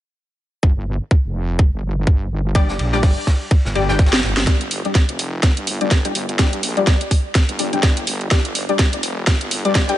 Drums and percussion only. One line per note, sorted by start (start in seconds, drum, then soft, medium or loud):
0.63 kick loud
1.11 kick loud
1.59 kick loud
2.07 kick loud
2.55 kick loud
2.55 ride medium
2.68 snare soft
2.79 ride medium
2.93 snare soft
3.03 kick loud
3.03 snare loud
3.03 open hi-hat medium
3.27 kick medium
3.27 snare loud
3.27 ride medium
3.51 kick loud
3.51 ride medium
3.65 snare medium
3.75 ride medium
3.88 snare medium
3.98 kick loud
3.98 snare medium
3.98 ride medium
4.06 snare medium
4.06 ride medium
4.12 snare medium
4.12 ride medium
4.17 snare medium
4.17 ride medium
4.23 snare medium
4.23 ride medium
4.37 snare medium
4.37 snare loud
4.37 ride medium
4.47 kick loud
4.47 snare soft
4.47 closed hi-hat medium
4.61 closed hi-hat medium
4.71 open hi-hat loud
4.85 closed hi-hat soft
4.95 kick loud
4.95 snare soft
4.95 closed hi-hat medium
5.09 closed hi-hat medium
5.19 open hi-hat loud
5.43 kick loud
5.43 snare soft
5.43 closed hi-hat medium
5.57 closed hi-hat medium
5.67 open hi-hat loud
5.81 closed hi-hat soft
5.91 kick loud
5.91 snare soft
5.91 closed hi-hat medium
6.05 closed hi-hat medium
6.15 open hi-hat loud
6.29 closed hi-hat soft
6.39 kick loud
6.39 snare medium
6.39 closed hi-hat medium
6.53 closed hi-hat soft
6.63 open hi-hat loud
6.77 closed hi-hat soft
6.87 kick loud
6.87 snare soft
6.87 closed hi-hat medium
7.01 closed hi-hat medium
7.11 kick medium
7.11 open hi-hat loud
7.35 kick loud
7.35 snare medium
7.35 closed hi-hat medium
7.49 closed hi-hat medium
7.59 open hi-hat loud
7.73 closed hi-hat soft
7.83 kick loud
7.83 snare medium
7.83 closed hi-hat medium
7.97 closed hi-hat medium
8.07 open hi-hat loud
8.21 closed hi-hat soft
8.31 kick loud
8.31 snare medium
8.31 closed hi-hat medium
8.45 closed hi-hat soft
8.55 open hi-hat loud
8.69 closed hi-hat soft
8.79 kick loud
8.79 snare medium
8.79 closed hi-hat medium
8.93 closed hi-hat soft
9.03 open hi-hat loud
9.27 kick loud
9.27 snare medium
9.27 closed hi-hat medium
9.41 closed hi-hat soft
9.51 open hi-hat loud
9.65 closed hi-hat soft
9.75 kick loud
9.75 snare medium
9.75 closed hi-hat medium
9.89 closed hi-hat medium